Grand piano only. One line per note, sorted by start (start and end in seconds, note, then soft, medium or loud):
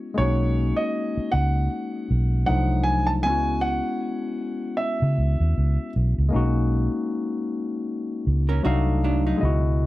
0.18 0.80 C#5 medium
0.77 1.34 D#5 medium
1.32 2.45 F#5 medium
2.46 2.83 F#5 medium
2.84 3.08 G#5 medium
3.07 3.12 A5 medium
3.23 3.64 G#5 loud
3.61 4.74 F#5 medium
4.77 5.89 E5 medium